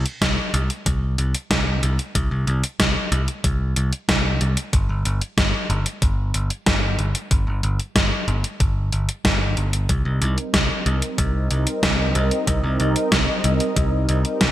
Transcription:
0.06 closed hi-hat
0.22 C2, kick, snare, closed hi-hat
0.54 C2, closed hi-hat
0.70 closed hi-hat
0.86 C2, kick, closed hi-hat
1.18 C2, closed hi-hat
1.35 closed hi-hat
1.51 C2, kick, snare, closed hi-hat
1.83 C2, closed hi-hat
1.99 closed hi-hat
2.15 C2, kick, closed hi-hat
2.31 C2
2.47 C2, closed hi-hat
2.64 closed hi-hat
2.80 C2, kick, snare, closed hi-hat
3.12 C2, closed hi-hat
3.28 closed hi-hat
3.44 C2, kick, closed hi-hat
3.76 C2, closed hi-hat
3.93 closed hi-hat
4.09 C2, kick, snare, closed hi-hat
4.41 C2, closed hi-hat
4.57 closed hi-hat
4.73 G1, kick, closed hi-hat
4.89 G1
5.05 G1, closed hi-hat
5.21 closed hi-hat
5.38 G1, kick, snare, closed hi-hat
5.70 G1, closed hi-hat
5.86 closed hi-hat
6.02 G1, kick, closed hi-hat
6.34 G1, closed hi-hat
6.50 closed hi-hat
6.66 G1, kick, snare, closed hi-hat
6.99 G1, closed hi-hat
7.15 closed hi-hat
7.31 G1, kick, closed hi-hat
7.47 G1
7.63 G1, closed hi-hat
7.79 closed hi-hat
7.96 G1, kick, snare, closed hi-hat
8.28 G1, closed hi-hat
8.44 closed hi-hat
8.60 G1, kick, closed hi-hat
8.92 G1, closed hi-hat
9.09 closed hi-hat
9.25 G1, kick, snare, closed hi-hat
9.57 G1, closed hi-hat
9.73 closed hi-hat
9.89 C2 G3 C4 D#4 A#4 D#5, kick, closed hi-hat
10.05 C2
10.21 C2, closed hi-hat
10.38 closed hi-hat
10.54 C2, kick, snare, closed hi-hat
10.86 C2, closed hi-hat
11.02 closed hi-hat
11.18 C2, kick, closed hi-hat
11.51 C2, closed hi-hat
11.67 closed hi-hat
11.83 C2, kick, snare, closed hi-hat
12.15 C2, closed hi-hat
12.31 closed hi-hat
12.47 C2, kick, closed hi-hat
12.63 C2
12.80 C2, closed hi-hat
12.96 closed hi-hat
13.12 C2, kick, snare, closed hi-hat
13.44 C2, closed hi-hat
13.60 closed hi-hat
13.76 C2, kick, closed hi-hat
14.09 C2, closed hi-hat
14.25 closed hi-hat
14.41 C2, kick, snare, closed hi-hat

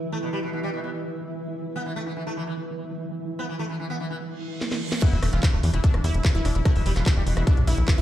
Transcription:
Already playing: E3 E4 B4 E5 E6
0.12 A3
0.23 B2
0.33 G3
0.43 B2
0.53 B2
0.63 G3
0.74 B2
0.84 B2
1.76 B3
1.86 E3
1.96 A3
2.06 E3
2.16 E3
2.27 A3
2.37 E3
2.47 E3
3.39 B3
3.49 E3
3.59 A3
3.69 E3
3.80 E3
3.90 B3
4.00 E3
4.10 E3
4.21 reverse cymbal
4.61 snare
4.72 snare
4.92 snare
5.02 E3 B3 E4, kick, cross-stick, closed hi-hat, crash, sub drop
5.12 E1 E3 E5
5.23 E1 A3, cross-stick, open hi-hat
5.33 E1 E3 F4, closed hi-hat
5.43 E3, kick, clap, closed hi-hat
5.53 E1 A3, cross-stick
5.63 E2 E3, open hi-hat
5.74 E1 E3 E4, cross-stick, closed hi-hat
5.84 D4, kick, closed hi-hat
5.94 E1, cross-stick, closed hi-hat
6.04 E2 E4, open hi-hat
6.14 E1, closed hi-hat
6.25 B4, kick, cross-stick, clap, closed hi-hat
6.35 E1 E4, closed hi-hat
6.45 E1 D4, cross-stick, open hi-hat
6.55 E1 E4, closed hi-hat
6.65 A3 E4, kick, cross-stick, closed hi-hat
6.76 E1 B2 E5, open hi-hat
6.86 E1 G3, open hi-hat
6.96 E1 B2 F4, cross-stick, clap, closed hi-hat
7.06 B2, kick, clap, closed hi-hat
7.16 E1 G3, cross-stick
7.27 E1 B2, open hi-hat
7.37 E1 B2 E4, cross-stick, closed hi-hat
7.47 D4, kick, closed hi-hat
7.57 B1, closed hi-hat
7.67 B1 E4, cross-stick, open hi-hat
7.78 B1, closed hi-hat
7.88 B4, kick, cross-stick, clap, closed hi-hat
7.98 G1 E4, closed hi-hat

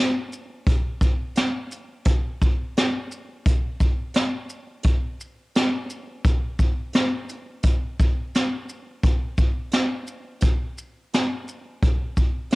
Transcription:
0.33 shaker
0.67 kick, closed hi-hat
1.01 kick, shaker
1.36 snare, closed hi-hat
1.72 closed hi-hat, shaker
2.05 kick, closed hi-hat
2.42 kick, shaker
2.77 snare, closed hi-hat
3.12 shaker
3.46 kick, closed hi-hat
3.80 kick, shaker
4.14 snare, closed hi-hat
4.50 shaker
4.83 kick, closed hi-hat
5.21 shaker
5.55 snare, closed hi-hat
5.90 shaker
6.24 kick, closed hi-hat
6.59 kick, shaker
6.93 snare, closed hi-hat
7.29 closed hi-hat, shaker
7.63 kick, closed hi-hat
8.00 kick, shaker
8.35 snare, closed hi-hat
8.69 shaker
9.03 kick, closed hi-hat
9.38 kick, shaker
9.72 snare, closed hi-hat
10.07 shaker
10.41 kick, closed hi-hat
10.78 shaker
11.13 snare, closed hi-hat
11.48 shaker
11.82 kick, closed hi-hat
12.17 kick, shaker
12.51 closed hi-hat

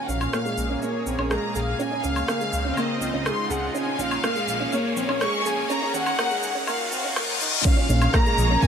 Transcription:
Already playing: A#2 C#4 F4, riser
0.09 A#1 C#4 F5, shaker
0.21 low woodblock, shaker
0.29 A#3, cross-stick, shaker
0.36 G#4
0.45 G#3, shaker
0.58 A#1, shaker
0.70 C#4
0.82 A#3 C#5, shaker
1.06 A#1 C4, shaker
1.18 A#1 C#4, low woodblock
1.31 G#3 A#5, cross-stick, shaker
1.55 A#1 G#4 F5, shaker
1.79 C#3 C#4 G#5, shaker
1.91 C#4
2.04 C#2 C#4 F5, shaker
2.16 low woodblock, shaker
2.27 A#3 C4, cross-stick, shaker
2.41 G#3, shaker
2.53 C#2, shaker
2.65 C#4 D#4 F4
2.77 A#3 D#5, low woodblock, shaker
3.01 C#2 C4, shaker
3.13 C#2 C#4
3.26 G#3 C6, cross-stick, shaker
3.50 C#2 G#4 F#5, shaker
3.74 A#2 C#4 G#5, shaker
3.87 C#4
3.99 A#1 C#4 F5, shaker
4.09 A#3, low woodblock, shaker
4.23 A#3, cross-stick, shaker
4.28 C#4
4.36 G#3, shaker
4.47 A#1, shaker
4.60 C#4 G#4
4.72 A#3 C#5, shaker
4.96 A#1 C4, shaker
5.08 A#1 C#4, low woodblock
5.21 G#3 C#6, cross-stick, shaker
5.45 A#1 G#4 G#5, shaker
5.70 D#3 C#4 A#5, shaker
5.82 C#4
5.94 D#2 C#4 F#5, shaker
6.06 low woodblock, shaker
6.19 A#3, cross-stick, shaker
6.31 G#3, shaker
6.43 D#2, shaker
6.55 C#4 F4 F#4
6.67 A#3 F5, reverse cymbal, low woodblock, shaker
6.92 D#2 C4, shaker
7.04 D#2 C#4
7.16 A#3, cross-stick, shaker
7.41 D#2 D#4, shaker
7.65 A#2 C#4 F5, kick, crash, shaker
7.77 C#4
7.81 A#3 G#4
7.89 A#1 C#4, shaker
8.02 C#5, low woodblock, shaker
8.14 A#3 A#5, kick, cross-stick, shaker
8.26 G#3, shaker
8.38 A#1, shaker
8.50 C#4
8.63 A#3 G#5, kick, shaker

